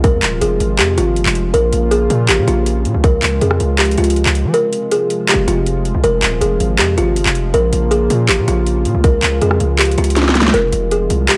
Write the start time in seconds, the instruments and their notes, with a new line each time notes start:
Already playing: 808-style bass C2, analog synth pad C3 F3 G#3 F4
0.04 kalimba A#4, kick, closed hi-hat
0.13 808-style bass F2
0.23 808-style bass D#1, clap, closed hi-hat
0.41 808-style bass F1, kalimba G#4, closed hi-hat
0.60 808-style bass G#1, closed hi-hat
0.79 808-style bass F2, kalimba G4, clap, closed hi-hat
0.98 808-style bass G#1, kalimba F4, closed hi-hat
1.16 808-style bass G1, closed hi-hat
1.26 808-style bass F1, clap
1.35 closed hi-hat
1.54 808-style bass A#1, analog synth pad C#3 A#3 F4, kalimba A#4, closed hi-hat
1.73 808-style bass A#1, closed hi-hat
1.91 kalimba G#4, closed hi-hat
2.10 808-style bass A#2, closed hi-hat
2.29 808-style bass G#1, kalimba G4, clap, closed hi-hat
2.38 808-style bass A#2
2.48 808-style bass A#1, kalimba F4, closed hi-hat
2.66 closed hi-hat
2.85 808-style bass A#2, closed hi-hat
2.94 808-style bass C#2
3.04 analog synth pad F3 G#3 F4, kalimba A#4, kick, closed hi-hat
3.23 808-style bass C#2, clap, closed hi-hat
3.41 808-style bass F2, kalimba G#4, closed hi-hat
3.51 cross-stick
3.60 808-style bass C#2, closed hi-hat
3.79 kalimba G4, clap, closed hi-hat
3.85 closed hi-hat
3.91 closed hi-hat
3.98 808-style bass C#2, kalimba F4, closed hi-hat
4.04 closed hi-hat
4.10 closed hi-hat
4.16 closed hi-hat
4.26 808-style bass C#2, clap
4.35 closed hi-hat
4.45 808-style bass F3
4.54 analog synth pad C3 G#3 F4, kalimba A#4, closed hi-hat
4.73 closed hi-hat
4.91 kalimba G#4, closed hi-hat
5.10 closed hi-hat
5.29 kalimba G4, clap, closed hi-hat
5.34 808-style bass F1
5.48 808-style bass F1, kalimba F4, closed hi-hat
5.66 closed hi-hat
5.85 closed hi-hat
5.95 808-style bass C2
6.04 808-style bass F1, kalimba A#4, closed hi-hat
6.23 808-style bass D#1, clap, closed hi-hat
6.41 808-style bass F1, kalimba G#4, closed hi-hat
6.60 808-style bass G#1, closed hi-hat
6.79 808-style bass F2, kalimba G4, clap, closed hi-hat
6.98 808-style bass G#1, kalimba F4, closed hi-hat
7.16 808-style bass G1, closed hi-hat
7.26 808-style bass F1, clap
7.35 closed hi-hat
7.54 808-style bass A#1, analog synth pad C#3 A#3 F4, kalimba A#4, closed hi-hat
7.73 808-style bass A#1, closed hi-hat
7.91 kalimba G#4, closed hi-hat
8.10 808-style bass A#2, closed hi-hat
8.29 808-style bass G#1, kalimba G4, clap, closed hi-hat
8.38 808-style bass A#2
8.48 808-style bass A#1, kalimba F4, closed hi-hat
8.66 closed hi-hat
8.85 808-style bass A#2, closed hi-hat
8.95 808-style bass C#2
9.04 analog synth pad G#3, kalimba A#4, kick, closed hi-hat
9.23 808-style bass C#2, clap, closed hi-hat
9.41 808-style bass F2, kalimba G#4, closed hi-hat
9.51 cross-stick
9.60 808-style bass C#2, closed hi-hat
9.79 kalimba G4, clap, closed hi-hat
9.85 closed hi-hat
9.91 closed hi-hat
9.98 808-style bass C#2, kalimba F4, closed hi-hat
10.04 closed hi-hat
10.10 closed hi-hat
10.16 snare, closed hi-hat
10.23 snare
10.29 snare
10.35 snare, closed hi-hat
10.41 snare
10.48 snare
10.54 808-style bass F1, analog synth pad C3 F3 G#3 F4, kalimba A#4, closed hi-hat
10.73 808-style bass F1, closed hi-hat
10.91 kalimba G#4, closed hi-hat
11.10 808-style bass C2, closed hi-hat
11.29 kalimba G4, clap, closed hi-hat